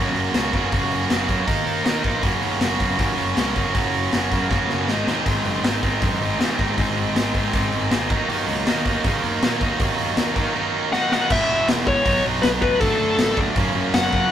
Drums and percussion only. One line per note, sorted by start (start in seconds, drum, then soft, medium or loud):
0.16 open hi-hat soft
0.34 snare medium
0.34 open hi-hat medium
0.53 kick medium
0.53 open hi-hat soft
0.72 kick medium
0.72 open hi-hat medium
0.91 open hi-hat soft
1.10 snare loud
1.10 open hi-hat medium
1.29 kick medium
1.29 open hi-hat medium
1.48 kick loud
1.48 open hi-hat medium
1.67 open hi-hat medium
1.86 snare loud
1.86 open hi-hat medium
2.04 kick medium
2.04 open hi-hat medium
2.23 kick loud
2.23 open hi-hat medium
2.42 open hi-hat soft
2.61 snare loud
2.61 open hi-hat medium
2.80 kick medium
2.80 open hi-hat medium
2.99 kick loud
2.99 open hi-hat medium
3.18 open hi-hat soft
3.37 snare loud
3.37 open hi-hat medium
3.56 kick medium
3.56 open hi-hat medium
3.75 kick medium
3.75 open hi-hat medium
3.94 open hi-hat soft
4.13 snare loud
4.13 open hi-hat medium
4.32 kick medium
4.32 open hi-hat soft
4.51 kick loud
4.51 snare medium
4.69 snare medium
4.88 snare medium
5.07 snare medium
5.26 kick medium
5.26 open hi-hat medium
5.26 crash medium
5.45 open hi-hat soft
5.64 snare loud
5.64 open hi-hat medium
5.83 kick medium
5.83 open hi-hat medium
6.02 kick loud
6.02 open hi-hat medium
6.22 open hi-hat soft
6.40 snare medium
6.40 open hi-hat medium
6.59 kick medium
6.59 open hi-hat medium
6.78 kick loud
6.78 open hi-hat medium
6.97 open hi-hat soft
7.16 snare loud
7.16 open hi-hat medium
7.35 kick medium
7.35 open hi-hat medium
7.53 kick loud
7.53 open hi-hat medium
7.72 open hi-hat soft
7.91 snare loud
7.91 open hi-hat medium
8.10 kick loud
8.10 open hi-hat medium
8.29 open hi-hat medium
8.49 open hi-hat medium
8.67 snare loud
8.67 open hi-hat medium
8.85 kick medium
8.85 open hi-hat medium
9.04 kick loud
9.04 open hi-hat medium
9.23 open hi-hat soft
9.42 snare loud
9.42 open hi-hat medium
9.61 kick medium
9.61 open hi-hat medium
9.80 kick loud
9.80 open hi-hat medium
9.98 open hi-hat medium
10.17 snare loud
10.17 open hi-hat medium
10.36 kick medium
10.36 open hi-hat medium
10.93 snare medium
11.12 snare medium
11.30 kick loud
11.30 crash loud
11.68 snare loud
11.68 open hi-hat medium
11.87 kick loud
12.06 kick loud
12.06 open hi-hat medium
12.43 snare loud
12.43 open hi-hat medium
12.62 kick medium
12.81 kick loud
12.81 open hi-hat medium
13.18 snare loud
13.18 open hi-hat medium
13.37 kick medium
13.56 kick loud
13.56 open hi-hat medium
13.94 snare loud
13.94 open hi-hat medium
14.13 kick medium